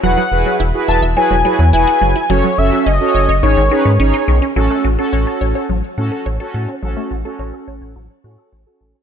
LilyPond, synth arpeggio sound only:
\new Staff \with { instrumentName = "Synth arpeggio sound" } { \time 4/4 \key a \lydian \tempo 4 = 106 fis16 fis16 r16 fis16 e'16 r16 e''16 e''16 fis16 fis16 fis16 fis16 e'16 fis'16 fis16 e'16 | fis16 fis16 r16 fis16 cis'16 r16 cis''16 cis''16 dis16 dis16 dis16 dis16 cis'16 dis'16 dis16 cis'16 | fis16 a16 fis'16 a'16 cis''16 a'16 cis''16 cis''16 fis16 r16 fis'16 a'16 cis''16 a'16 a'16 cis'16 | fis16 a16 fis'16 a'16 cis''16 a'16 cis''16 cis''16 fis16 r16 fis'16 a'16 cis''16 a'16 a'16 cis'16 | }